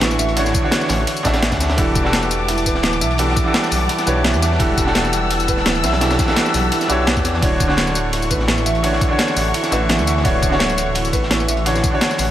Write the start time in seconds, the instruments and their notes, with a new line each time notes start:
Already playing: detuned saw bass A1, grand piano D3 D4 F#4 C#5 E5, string section D4 F#4 C#6, felt piano E4 B4 E5
0.00 felt piano E3, snare, closed hi-hat, ride
0.11 tambourine
0.19 detuned saw bass A1, felt piano E5, closed hi-hat, tambourine
0.28 closed hi-hat
0.36 grand piano D3 D4 F#4 C#5, felt piano E4, closed hi-hat, ride
0.46 snare, tambourine
0.54 kick, closed hi-hat, tambourine
0.62 grand piano D3 D4 F#4 C#5
0.71 snare, closed hi-hat, ride
0.81 snare, tambourine
0.89 detuned saw bass A1, snare, closed hi-hat, open hi-hat, tambourine
1.07 closed hi-hat, ride
1.17 closed hi-hat, tambourine
1.23 detuned saw bass A1, grand piano D3 D4 F#4 E5, felt piano D4, kick, snare, closed hi-hat, tambourine
1.33 snare, closed hi-hat
1.42 snare, closed hi-hat, ride
1.52 detuned saw bass D2, kick, snare, closed hi-hat, tambourine
1.60 snare, closed hi-hat, tambourine
1.69 snare, closed hi-hat
1.77 detuned saw bass E1, grand piano E3 D4 F#4 G4 A4, string section G3 F#5 A5 D6, felt piano E4, kick, closed hi-hat, ride
1.95 kick, closed hi-hat, tambourine
2.03 grand piano E3 D4 F#4 G4 A4, snare
2.13 snare, closed hi-hat, ride
2.23 tambourine
2.31 closed hi-hat, tambourine
2.48 felt piano E4, closed hi-hat, ride
2.58 closed hi-hat, tambourine
2.66 detuned saw bass D1, felt piano B4, kick, closed hi-hat, tambourine
2.75 snare
2.83 felt piano E3, snare, closed hi-hat, ride
2.93 tambourine
3.01 detuned saw bass B1, felt piano E5, closed hi-hat, tambourine
3.11 closed hi-hat
3.18 grand piano E3 D4 F#4 G4 A4, felt piano E4, closed hi-hat, ride
3.29 snare
3.36 kick, closed hi-hat, tambourine
3.44 grand piano E3 D4 F#4 G4 A4
3.54 snare, closed hi-hat, ride
3.63 snare, tambourine
3.71 detuned saw bass B1, snare, closed hi-hat, open hi-hat, tambourine
3.89 felt piano E4, closed hi-hat, ride
3.98 snare, closed hi-hat, tambourine
4.06 detuned saw bass B1, grand piano E3 D4 F#4 G4 C#5, felt piano B4, closed hi-hat, tambourine
4.24 felt piano E3, snare, closed hi-hat, ride
4.34 detuned saw bass E2, tambourine
4.42 felt piano E5, snare, closed hi-hat, tambourine
4.52 snare
4.59 detuned saw bass E1, grand piano E3 D4 F#4 G4 A4, felt piano E4, string section E6, kick, closed hi-hat, ride
4.78 kick, closed hi-hat, tambourine
4.85 grand piano E3 D4 F#4 G4 A4, snare
4.95 snare, closed hi-hat, ride
5.05 tambourine
5.13 closed hi-hat, tambourine
5.30 felt piano E4, closed hi-hat, ride
5.40 closed hi-hat, tambourine
5.48 detuned saw bass D1, felt piano B4, kick, closed hi-hat, tambourine
5.57 snare
5.66 felt piano E3, snare, closed hi-hat, ride
5.75 tambourine
5.83 detuned saw bass B1, felt piano E5, snare, closed hi-hat, tambourine
5.93 snare, closed hi-hat
6.01 grand piano E3 D4 F#4 G4 A4, felt piano E4, snare, closed hi-hat, ride
6.10 snare, closed hi-hat, tambourine
6.18 kick, snare, closed hi-hat, tambourine
6.26 grand piano E3 D4 F#4 G4 A4, snare, closed hi-hat
6.36 snare, closed hi-hat, ride
6.45 snare, tambourine
6.54 detuned saw bass B1, snare, closed hi-hat, open hi-hat, tambourine
6.72 felt piano E4, closed hi-hat, ride
6.81 snare, closed hi-hat, tambourine
6.88 detuned saw bass B1, grand piano E3 D4 F#4 G4 C#5, felt piano E4, closed hi-hat, tambourine
7.07 felt piano B4, snare, closed hi-hat, ride
7.16 detuned saw bass E2, kick, tambourine
7.25 felt piano G4, snare, closed hi-hat, tambourine
7.33 snare
7.42 detuned saw bass D1, grand piano D3 D4 F#4 C#5, string section D4 F#4 C#6, felt piano E4, kick, closed hi-hat, ride
7.60 kick, closed hi-hat, tambourine
7.68 grand piano D3 D4 F#4 C#5, snare
7.77 snare, closed hi-hat, ride
7.87 tambourine
7.95 closed hi-hat, tambourine
8.13 felt piano E4, closed hi-hat, ride
8.22 closed hi-hat, tambourine
8.30 detuned saw bass A1, felt piano B4, kick, closed hi-hat, tambourine
8.39 snare
8.48 felt piano E3, snare, closed hi-hat, ride
8.58 tambourine
8.66 detuned saw bass A1, felt piano E5, closed hi-hat, tambourine
8.75 closed hi-hat
8.83 grand piano D3 D4 F#4 C#5, felt piano E4, closed hi-hat, ride
8.93 snare
9.01 kick, closed hi-hat, tambourine
9.09 grand piano D3 D4 F#4 C#5
9.19 snare, closed hi-hat, ride
9.28 snare, tambourine
9.36 detuned saw bass A1, snare, closed hi-hat, open hi-hat, tambourine
9.54 felt piano E4, closed hi-hat, ride
9.63 snare, closed hi-hat, tambourine
9.71 detuned saw bass A1, grand piano D3 D4 F#4 E5, felt piano B4, closed hi-hat, tambourine
9.89 felt piano E3, snare, closed hi-hat, ride
9.99 detuned saw bass D2, tambourine
10.07 felt piano E5, snare, closed hi-hat, tambourine
10.17 snare
10.24 detuned saw bass D1, grand piano D3 D4 F#4 C#5, felt piano E4, kick, closed hi-hat, ride
10.42 kick, closed hi-hat, tambourine
10.50 grand piano D3 D4 F#4 C#5, snare
10.60 snare, closed hi-hat, ride
10.70 tambourine
10.78 closed hi-hat, tambourine
10.95 felt piano E4, closed hi-hat, ride
11.05 closed hi-hat, tambourine
11.13 detuned saw bass A1, felt piano B4, kick, closed hi-hat, tambourine
11.23 snare
11.31 felt piano E3, snare, closed hi-hat, ride
11.40 tambourine
11.48 detuned saw bass A1, felt piano E5, closed hi-hat, tambourine
11.57 closed hi-hat
11.65 grand piano D3 D4 F#4 C#5, felt piano E4, closed hi-hat, ride
11.75 snare, tambourine
11.84 kick, closed hi-hat, tambourine
11.91 grand piano D3 D4 F#4 C#5
12.01 snare, closed hi-hat, ride
12.11 snare, tambourine
12.18 detuned saw bass A1, snare, closed hi-hat, open hi-hat, tambourine